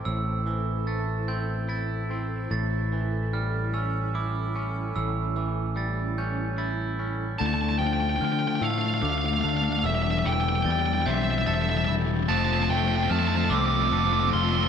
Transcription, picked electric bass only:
X:1
M:6/8
L:1/8
Q:3/8=49
K:Am
V:1 name="Picked electric bass" clef=bass
A,,,6 | A,,,6 | A,,,6 | D,, D,, D, A,, D,, D,, |
E,,, E,,, E,, B,,, E,,, E,,, | F,,, F,,, F,, C,, F,,, F,,, |]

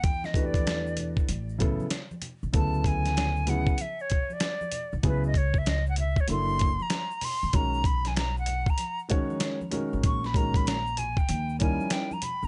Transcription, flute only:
X:1
M:4/4
L:1/16
Q:"Swing 16ths" 1/4=96
K:B
V:1 name="Flute"
(3=g2 d2 =d2- d3 z8 z | =a2 g4 f2 e c2 =d4 z | B d c e d f e c ^b3 a3 b2 | a2 b g a f2 a2 z6 z |
c' b a b a2 g =g3 ^g2 =g a b z |]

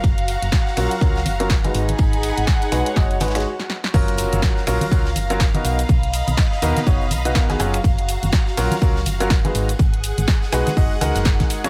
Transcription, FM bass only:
X:1
M:4/4
L:1/16
Q:"Swing 16ths" 1/4=123
K:F#
V:1 name="FM bass" clef=bass
F,,,3 F,,, z2 A,,, z C,,2 F,,,4 G,,, z | G,,,3 G,,, z2 B,,, z F,,,2 G,,,2 z4 | F,,,3 F,,, z2 A,,, z C,,2 F,,,4 B,,, z | B,,,3 B,,, z2 D,, z F,,,2 B,,,4 F,,, z |
F,,,3 F,,, z2 A,,, z C,,2 F,,,4 G,,, z | G,,,3 G,,, z2 B,,, z F,,, z C,, F,,,2 B,,, z2 |]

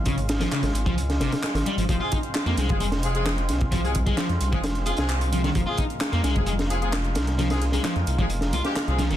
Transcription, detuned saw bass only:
X:1
M:4/4
L:1/16
Q:1/4=131
K:Fm
V:1 name="Detuned saw bass" clef=bass
A,,,4 z A,,, A,,, D,,3 A,,, z2 A,,, z A,,, | F,,, z4 F,, C,, F,,,6- F,,, C,,2- | C,,4 z F,, C,, F,,,4 C,,4- C,, | F,,, z4 F,, C,, F,,,6- F,,, C,,2- |
C,,4 z F,, C,, F,,,3 C,, z2 C,,2 E,,, |]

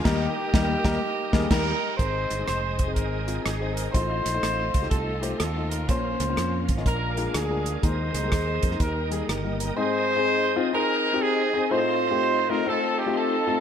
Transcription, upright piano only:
X:1
M:4/4
L:1/16
Q:"Swing" 1/4=124
K:Ab
V:1 name="Upright piano"
[E,G,B,EB]2 z2 [G,B,E]2 [G,B,EB]2 z2 [G,B,EB]2 [G,B,EB]2 z2 | [A,CEc]2 z [A,CEc]3 z [A,CEc]2 z [A,CEF]2 z [A,CEc]2 z | [=A,EFc]2 z [A,EFc]3 z [A,EFG]2 z [A,EFc]2 z [A,EF=A]2 z | [B,DFd]2 z [B,DFc]3 z [B,DFe] z2 [A,=DFB]2 z [A,DFB]2 z |
[A,B,EB]2 z [G,A,B,EB]3 z [A,B,EB] z2 [G,B,EB]2 z [G,B,EB]2 z | [CEA]2 z [CEA]2 z [CEF] z [CEA]2 z [CEG]2 z [CEA] z | [=A,CEFc]2 z [A,CEFG]2 z [A,CEFe] z [A,CEFc]2 z [A,CEFG]2 z [A,CEF=A] z |]
V:2 name="Upright piano" clef=bass
z16 | A,,6 z8 z2 | =A,,6 z8 z2 | B,,6 z2 B,,6 z2 |
E,6 z2 E,6 z2 | A,,6 z8 z2 | =A,,6 z8 z2 |]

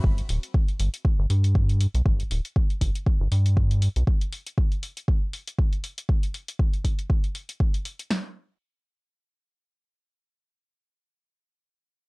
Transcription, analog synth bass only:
X:1
M:4/4
L:1/16
Q:"Swing 16ths" 1/4=119
K:Clyd
V:1 name="Analog synth bass" clef=bass
G,,, z D,,, z3 G,,, z2 G,,, G,,4 z B,,, | G,,, z D,,, z3 G,,, z2 G,,, G,,4 z B,,, | z16 | z16 |
z16 | z16 |]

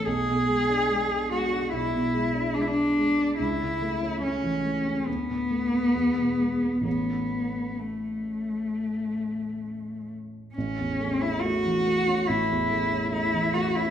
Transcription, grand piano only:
X:1
M:4/4
L:1/16
Q:1/4=70
K:A
V:1 name="Grand piano" clef=bass
B,,, B,, G, D G, D G, D B,,, B,, G, D G, D G, D | C,, C, A, C A, E, A, C D,, A,, A, B, E,, B,, G, B, | [A,,,E,A,C]16 | A,,, E,, A, C A, E, A, C A,,, E,, A, C A, E, A, C |]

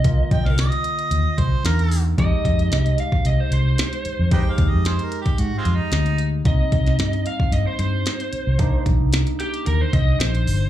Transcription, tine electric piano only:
X:1
M:4/4
L:1/8
Q:1/4=112
K:Cm
V:1 name="Tine electric piano"
[D,B,F]6 [B,DE]2 | [A,EG]8 | [A,EG]8 | [B,CE]8 |
[B,DE]8 |]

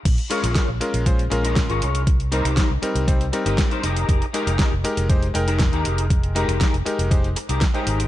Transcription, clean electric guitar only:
X:1
M:4/4
L:1/16
Q:1/4=119
K:Fm
V:1 name="Clean electric guitar"
z2 [FABd]3 z6 [FABe] z [FABd]3 | z2 [EGBc]3 z6 [EGBe] z [EGBc] [EGAB]2- | [EGAB] z [EGAB]3 z6 [EGAB] z [EGAB]3 | z2 [EGAB]3 z6 [EGAB] z [EGAB]3 |]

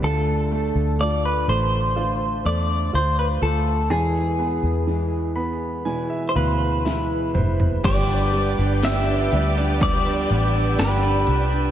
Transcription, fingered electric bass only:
X:1
M:4/4
L:1/16
Q:1/4=62
K:Gmix
V:1 name="Fingered electric bass" clef=bass
D,,3 D,,3 A,,,4 E,,2 D,,2 D,,2 | E,,3 E,,6 z D,,4 F,,,2 | G,,,3 G,,,3 D,,4 A,,,2 G,,,2 C,,2 |]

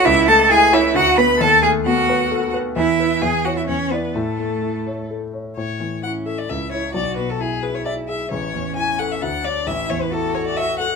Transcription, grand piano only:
X:1
M:3/4
L:1/8
Q:1/4=132
K:A
V:1 name="Grand piano"
C,, A, E c D,, [B,B] | ^D,, A, B, B A B | E,, [EB] E,, [Ec] E,, [Ed] | A,, A, E c A c |
A,, E, E A C,, [Ec] | B,,, B,, E G e G | A,,, E,, E A D,, [Dc] | A,,, E,, E A e A |]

